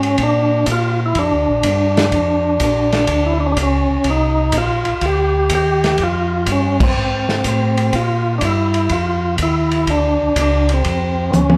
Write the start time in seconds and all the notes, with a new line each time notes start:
Already playing: G#2 C#4
0.03 ride
0.18 A#2, kick, ride
0.23 D4
0.66 A#2, kick, hi-hat pedal, ride
0.72 F4
1.06 E4
1.15 F2, kick, ride
1.19 D4
1.31 D2
1.48 A#1
1.63 G2, kick, hi-hat pedal, ride
1.97 snare, ride
2.12 F2, kick, ride
2.60 A#1, kick, hi-hat pedal, ride
2.92 snare, ride
3.07 D2, kick, ride
3.26 E4
3.40 D4
3.46 C#4
3.52 D4
3.57 C#2, kick, hi-hat pedal, ride
3.63 C#4
3.90 C#2
4.04 C2, kick, ride
4.10 D#4
4.52 A#1, kick, hi-hat pedal, ride
4.58 F4
4.85 A#1, ride
5.01 D2, kick, ride
5.05 G4
5.50 D#2, kick, hi-hat pedal, ride
5.55 G4
5.84 snare, ride
5.98 F2, kick, ride
6.03 F4
6.46 G2, kick, hi-hat pedal, ride
6.52 C#4
6.80 C4, kick, crash
6.97 G#2
7.29 snare
7.44 A2 C4, kick, hi-hat pedal, ride
7.77 ride
7.93 A#2 F4, kick, ride
8.38 G2 D4, kick, hi-hat pedal, ride
8.45 E4
8.74 ride
8.89 F2 F4, kick, ride
9.38 D#2, kick, hi-hat pedal, ride
9.43 E4
9.71 ride
9.87 D2 D4, kick, ride
10.22 D2
10.36 C#2 D4, kick, hi-hat pedal, ride
10.69 ride
10.73 C4
10.84 F2, kick, ride
11.32 D2 C4 C#4, hi-hat pedal, high tom
11.50 high tom